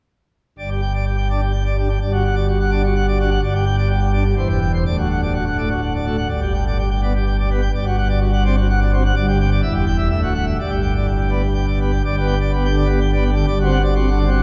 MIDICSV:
0, 0, Header, 1, 2, 480
1, 0, Start_track
1, 0, Key_signature, 1, "major"
1, 0, Tempo, 473186
1, 591, Time_signature, 3, 2, 24, 8
1, 4423, Tempo, 479233
1, 14508, End_track
2, 0, Start_track
2, 0, Title_t, "Pipe organ"
2, 0, Program_c, 0, 19
2, 593, Note_on_c, 0, 31, 67
2, 593, Note_on_c, 0, 74, 62
2, 596, Note_on_c, 0, 43, 70
2, 701, Note_off_c, 0, 74, 0
2, 716, Note_on_c, 0, 67, 66
2, 823, Note_off_c, 0, 67, 0
2, 826, Note_on_c, 0, 79, 85
2, 937, Note_off_c, 0, 79, 0
2, 956, Note_on_c, 0, 74, 57
2, 1063, Note_off_c, 0, 74, 0
2, 1069, Note_on_c, 0, 67, 53
2, 1180, Note_off_c, 0, 67, 0
2, 1188, Note_on_c, 0, 79, 69
2, 1299, Note_off_c, 0, 79, 0
2, 1318, Note_on_c, 0, 62, 63
2, 1323, Note_on_c, 0, 74, 58
2, 1425, Note_off_c, 0, 62, 0
2, 1428, Note_off_c, 0, 74, 0
2, 1437, Note_on_c, 0, 67, 59
2, 1545, Note_off_c, 0, 67, 0
2, 1545, Note_on_c, 0, 79, 65
2, 1658, Note_off_c, 0, 79, 0
2, 1682, Note_on_c, 0, 74, 55
2, 1787, Note_off_c, 0, 74, 0
2, 1806, Note_on_c, 0, 67, 64
2, 1810, Note_on_c, 0, 62, 57
2, 1909, Note_off_c, 0, 67, 0
2, 1911, Note_off_c, 0, 62, 0
2, 1919, Note_on_c, 0, 79, 57
2, 1996, Note_off_c, 0, 31, 0
2, 1998, Note_off_c, 0, 43, 0
2, 2019, Note_off_c, 0, 79, 0
2, 2041, Note_on_c, 0, 43, 72
2, 2046, Note_on_c, 0, 74, 64
2, 2047, Note_on_c, 0, 31, 75
2, 2148, Note_off_c, 0, 74, 0
2, 2155, Note_on_c, 0, 66, 66
2, 2262, Note_off_c, 0, 66, 0
2, 2274, Note_on_c, 0, 78, 97
2, 2381, Note_off_c, 0, 78, 0
2, 2388, Note_on_c, 0, 74, 65
2, 2497, Note_off_c, 0, 74, 0
2, 2512, Note_on_c, 0, 66, 56
2, 2619, Note_off_c, 0, 66, 0
2, 2635, Note_on_c, 0, 78, 71
2, 2741, Note_off_c, 0, 78, 0
2, 2750, Note_on_c, 0, 74, 63
2, 2751, Note_on_c, 0, 62, 68
2, 2858, Note_off_c, 0, 62, 0
2, 2858, Note_off_c, 0, 74, 0
2, 2876, Note_on_c, 0, 66, 76
2, 2981, Note_off_c, 0, 66, 0
2, 2999, Note_on_c, 0, 78, 77
2, 3102, Note_off_c, 0, 78, 0
2, 3126, Note_on_c, 0, 74, 70
2, 3226, Note_off_c, 0, 74, 0
2, 3240, Note_on_c, 0, 62, 66
2, 3245, Note_on_c, 0, 66, 74
2, 3342, Note_off_c, 0, 62, 0
2, 3345, Note_off_c, 0, 66, 0
2, 3350, Note_on_c, 0, 78, 70
2, 3430, Note_off_c, 0, 43, 0
2, 3433, Note_off_c, 0, 31, 0
2, 3451, Note_off_c, 0, 78, 0
2, 3484, Note_on_c, 0, 31, 87
2, 3485, Note_on_c, 0, 43, 95
2, 3485, Note_on_c, 0, 74, 73
2, 3584, Note_off_c, 0, 74, 0
2, 3602, Note_on_c, 0, 67, 77
2, 3702, Note_off_c, 0, 67, 0
2, 3714, Note_on_c, 0, 79, 113
2, 3817, Note_off_c, 0, 79, 0
2, 3837, Note_on_c, 0, 74, 74
2, 3938, Note_off_c, 0, 74, 0
2, 3955, Note_on_c, 0, 67, 76
2, 4057, Note_off_c, 0, 67, 0
2, 4061, Note_on_c, 0, 79, 87
2, 4169, Note_off_c, 0, 79, 0
2, 4185, Note_on_c, 0, 74, 70
2, 4190, Note_on_c, 0, 62, 71
2, 4292, Note_off_c, 0, 74, 0
2, 4294, Note_off_c, 0, 62, 0
2, 4307, Note_on_c, 0, 67, 73
2, 4404, Note_off_c, 0, 31, 0
2, 4404, Note_off_c, 0, 43, 0
2, 4408, Note_off_c, 0, 67, 0
2, 4435, Note_on_c, 0, 40, 83
2, 4439, Note_on_c, 0, 28, 84
2, 4439, Note_on_c, 0, 72, 73
2, 4539, Note_off_c, 0, 72, 0
2, 4559, Note_on_c, 0, 67, 65
2, 4659, Note_off_c, 0, 67, 0
2, 4678, Note_on_c, 0, 79, 86
2, 4779, Note_off_c, 0, 79, 0
2, 4804, Note_on_c, 0, 72, 62
2, 4896, Note_off_c, 0, 40, 0
2, 4898, Note_off_c, 0, 28, 0
2, 4899, Note_off_c, 0, 72, 0
2, 4916, Note_on_c, 0, 26, 72
2, 4918, Note_on_c, 0, 38, 76
2, 4921, Note_on_c, 0, 74, 71
2, 5023, Note_off_c, 0, 74, 0
2, 5041, Note_on_c, 0, 66, 67
2, 5144, Note_off_c, 0, 66, 0
2, 5166, Note_on_c, 0, 78, 84
2, 5267, Note_off_c, 0, 78, 0
2, 5292, Note_on_c, 0, 74, 61
2, 5392, Note_off_c, 0, 74, 0
2, 5408, Note_on_c, 0, 66, 65
2, 5510, Note_off_c, 0, 66, 0
2, 5527, Note_on_c, 0, 78, 65
2, 5630, Note_off_c, 0, 78, 0
2, 5643, Note_on_c, 0, 57, 56
2, 5643, Note_on_c, 0, 74, 57
2, 5748, Note_off_c, 0, 57, 0
2, 5748, Note_off_c, 0, 74, 0
2, 5763, Note_on_c, 0, 66, 59
2, 5868, Note_off_c, 0, 66, 0
2, 5884, Note_on_c, 0, 78, 59
2, 5989, Note_off_c, 0, 78, 0
2, 6016, Note_on_c, 0, 74, 55
2, 6116, Note_off_c, 0, 74, 0
2, 6125, Note_on_c, 0, 57, 54
2, 6125, Note_on_c, 0, 66, 57
2, 6230, Note_off_c, 0, 57, 0
2, 6230, Note_off_c, 0, 66, 0
2, 6238, Note_on_c, 0, 78, 51
2, 6326, Note_off_c, 0, 26, 0
2, 6327, Note_off_c, 0, 38, 0
2, 6341, Note_off_c, 0, 78, 0
2, 6359, Note_on_c, 0, 74, 67
2, 6364, Note_on_c, 0, 43, 67
2, 6366, Note_on_c, 0, 31, 72
2, 6467, Note_off_c, 0, 74, 0
2, 6486, Note_on_c, 0, 67, 58
2, 6591, Note_off_c, 0, 67, 0
2, 6606, Note_on_c, 0, 79, 79
2, 6711, Note_off_c, 0, 79, 0
2, 6737, Note_on_c, 0, 74, 59
2, 6838, Note_off_c, 0, 74, 0
2, 6856, Note_on_c, 0, 67, 63
2, 6957, Note_off_c, 0, 67, 0
2, 6975, Note_on_c, 0, 79, 72
2, 7076, Note_off_c, 0, 79, 0
2, 7092, Note_on_c, 0, 59, 60
2, 7095, Note_on_c, 0, 74, 62
2, 7194, Note_off_c, 0, 59, 0
2, 7196, Note_off_c, 0, 74, 0
2, 7223, Note_on_c, 0, 67, 63
2, 7320, Note_off_c, 0, 67, 0
2, 7333, Note_on_c, 0, 79, 76
2, 7434, Note_off_c, 0, 79, 0
2, 7462, Note_on_c, 0, 74, 66
2, 7558, Note_off_c, 0, 74, 0
2, 7576, Note_on_c, 0, 59, 73
2, 7578, Note_on_c, 0, 67, 72
2, 7674, Note_off_c, 0, 59, 0
2, 7675, Note_off_c, 0, 67, 0
2, 7684, Note_on_c, 0, 79, 66
2, 7756, Note_off_c, 0, 43, 0
2, 7758, Note_off_c, 0, 31, 0
2, 7782, Note_off_c, 0, 79, 0
2, 7814, Note_on_c, 0, 74, 77
2, 7815, Note_on_c, 0, 43, 91
2, 7817, Note_on_c, 0, 31, 82
2, 7912, Note_off_c, 0, 74, 0
2, 7930, Note_on_c, 0, 66, 74
2, 8028, Note_off_c, 0, 66, 0
2, 8047, Note_on_c, 0, 78, 104
2, 8146, Note_off_c, 0, 78, 0
2, 8162, Note_on_c, 0, 74, 73
2, 8263, Note_off_c, 0, 74, 0
2, 8278, Note_on_c, 0, 66, 76
2, 8380, Note_off_c, 0, 66, 0
2, 8400, Note_on_c, 0, 78, 81
2, 8501, Note_off_c, 0, 78, 0
2, 8519, Note_on_c, 0, 74, 82
2, 8523, Note_on_c, 0, 60, 69
2, 8620, Note_off_c, 0, 74, 0
2, 8623, Note_off_c, 0, 60, 0
2, 8640, Note_on_c, 0, 66, 87
2, 8740, Note_off_c, 0, 66, 0
2, 8767, Note_on_c, 0, 78, 86
2, 8864, Note_off_c, 0, 78, 0
2, 8883, Note_on_c, 0, 74, 82
2, 8981, Note_off_c, 0, 74, 0
2, 9001, Note_on_c, 0, 66, 83
2, 9003, Note_on_c, 0, 60, 81
2, 9098, Note_off_c, 0, 66, 0
2, 9100, Note_off_c, 0, 60, 0
2, 9125, Note_on_c, 0, 78, 81
2, 9189, Note_off_c, 0, 43, 0
2, 9190, Note_off_c, 0, 31, 0
2, 9215, Note_off_c, 0, 78, 0
2, 9227, Note_on_c, 0, 74, 80
2, 9230, Note_on_c, 0, 31, 83
2, 9234, Note_on_c, 0, 43, 92
2, 9329, Note_off_c, 0, 74, 0
2, 9352, Note_on_c, 0, 67, 80
2, 9451, Note_off_c, 0, 67, 0
2, 9473, Note_on_c, 0, 79, 106
2, 9571, Note_off_c, 0, 79, 0
2, 9583, Note_on_c, 0, 74, 75
2, 9680, Note_off_c, 0, 74, 0
2, 9683, Note_off_c, 0, 31, 0
2, 9685, Note_off_c, 0, 43, 0
2, 9698, Note_on_c, 0, 76, 68
2, 9700, Note_on_c, 0, 28, 85
2, 9702, Note_on_c, 0, 40, 80
2, 9801, Note_off_c, 0, 76, 0
2, 9820, Note_on_c, 0, 67, 69
2, 9922, Note_off_c, 0, 67, 0
2, 9937, Note_on_c, 0, 79, 95
2, 10041, Note_off_c, 0, 79, 0
2, 10051, Note_on_c, 0, 76, 75
2, 10153, Note_off_c, 0, 76, 0
2, 10160, Note_off_c, 0, 28, 0
2, 10161, Note_off_c, 0, 40, 0
2, 10174, Note_on_c, 0, 76, 68
2, 10175, Note_on_c, 0, 38, 74
2, 10176, Note_on_c, 0, 26, 77
2, 10281, Note_off_c, 0, 76, 0
2, 10300, Note_on_c, 0, 66, 62
2, 10405, Note_off_c, 0, 66, 0
2, 10413, Note_on_c, 0, 78, 87
2, 10522, Note_off_c, 0, 78, 0
2, 10544, Note_on_c, 0, 76, 48
2, 10644, Note_off_c, 0, 76, 0
2, 10646, Note_off_c, 0, 26, 0
2, 10646, Note_off_c, 0, 38, 0
2, 10666, Note_on_c, 0, 31, 67
2, 10669, Note_on_c, 0, 43, 63
2, 10673, Note_on_c, 0, 74, 58
2, 10774, Note_on_c, 0, 67, 58
2, 10776, Note_off_c, 0, 74, 0
2, 10887, Note_off_c, 0, 67, 0
2, 10901, Note_on_c, 0, 79, 72
2, 11012, Note_off_c, 0, 79, 0
2, 11029, Note_on_c, 0, 74, 56
2, 11137, Note_off_c, 0, 74, 0
2, 11141, Note_on_c, 0, 67, 46
2, 11253, Note_off_c, 0, 67, 0
2, 11258, Note_on_c, 0, 79, 54
2, 11372, Note_off_c, 0, 79, 0
2, 11372, Note_on_c, 0, 74, 47
2, 11376, Note_on_c, 0, 59, 47
2, 11489, Note_off_c, 0, 74, 0
2, 11491, Note_off_c, 0, 59, 0
2, 11493, Note_on_c, 0, 67, 50
2, 11610, Note_off_c, 0, 67, 0
2, 11620, Note_on_c, 0, 79, 54
2, 11736, Note_off_c, 0, 79, 0
2, 11747, Note_on_c, 0, 74, 45
2, 11861, Note_off_c, 0, 74, 0
2, 11874, Note_on_c, 0, 59, 54
2, 11878, Note_on_c, 0, 67, 56
2, 11985, Note_off_c, 0, 59, 0
2, 11988, Note_off_c, 0, 67, 0
2, 11992, Note_on_c, 0, 79, 43
2, 12087, Note_off_c, 0, 31, 0
2, 12088, Note_off_c, 0, 43, 0
2, 12099, Note_off_c, 0, 79, 0
2, 12118, Note_on_c, 0, 43, 77
2, 12122, Note_on_c, 0, 31, 86
2, 12124, Note_on_c, 0, 74, 78
2, 12231, Note_off_c, 0, 74, 0
2, 12237, Note_on_c, 0, 67, 71
2, 12271, Note_on_c, 0, 59, 66
2, 12347, Note_off_c, 0, 67, 0
2, 12350, Note_on_c, 0, 79, 99
2, 12419, Note_off_c, 0, 59, 0
2, 12463, Note_off_c, 0, 79, 0
2, 12480, Note_on_c, 0, 74, 65
2, 12589, Note_off_c, 0, 74, 0
2, 12602, Note_on_c, 0, 59, 57
2, 12606, Note_on_c, 0, 67, 66
2, 12713, Note_off_c, 0, 67, 0
2, 12727, Note_on_c, 0, 79, 70
2, 12746, Note_off_c, 0, 59, 0
2, 12763, Note_on_c, 0, 50, 60
2, 12833, Note_off_c, 0, 79, 0
2, 12845, Note_on_c, 0, 74, 68
2, 12906, Note_off_c, 0, 50, 0
2, 12928, Note_on_c, 0, 59, 69
2, 12952, Note_off_c, 0, 74, 0
2, 12962, Note_on_c, 0, 67, 67
2, 13068, Note_off_c, 0, 59, 0
2, 13069, Note_off_c, 0, 67, 0
2, 13082, Note_on_c, 0, 79, 72
2, 13189, Note_off_c, 0, 79, 0
2, 13209, Note_on_c, 0, 74, 68
2, 13240, Note_on_c, 0, 59, 68
2, 13312, Note_off_c, 0, 74, 0
2, 13319, Note_on_c, 0, 67, 73
2, 13382, Note_off_c, 0, 59, 0
2, 13389, Note_on_c, 0, 50, 64
2, 13425, Note_off_c, 0, 67, 0
2, 13436, Note_on_c, 0, 79, 62
2, 13515, Note_off_c, 0, 43, 0
2, 13517, Note_off_c, 0, 31, 0
2, 13528, Note_off_c, 0, 50, 0
2, 13538, Note_off_c, 0, 79, 0
2, 13550, Note_on_c, 0, 74, 71
2, 13552, Note_on_c, 0, 31, 91
2, 13555, Note_on_c, 0, 43, 91
2, 13659, Note_off_c, 0, 74, 0
2, 13683, Note_on_c, 0, 66, 68
2, 13720, Note_on_c, 0, 60, 73
2, 13783, Note_on_c, 0, 78, 105
2, 13786, Note_off_c, 0, 66, 0
2, 13859, Note_off_c, 0, 60, 0
2, 13894, Note_off_c, 0, 78, 0
2, 13910, Note_on_c, 0, 74, 74
2, 14017, Note_off_c, 0, 74, 0
2, 14032, Note_on_c, 0, 66, 69
2, 14033, Note_on_c, 0, 60, 61
2, 14138, Note_off_c, 0, 66, 0
2, 14153, Note_on_c, 0, 78, 72
2, 14174, Note_off_c, 0, 60, 0
2, 14184, Note_on_c, 0, 50, 69
2, 14258, Note_off_c, 0, 78, 0
2, 14261, Note_on_c, 0, 74, 76
2, 14328, Note_off_c, 0, 50, 0
2, 14332, Note_on_c, 0, 60, 68
2, 14370, Note_off_c, 0, 74, 0
2, 14380, Note_on_c, 0, 66, 77
2, 14479, Note_off_c, 0, 60, 0
2, 14489, Note_off_c, 0, 66, 0
2, 14508, Note_off_c, 0, 31, 0
2, 14508, Note_off_c, 0, 43, 0
2, 14508, End_track
0, 0, End_of_file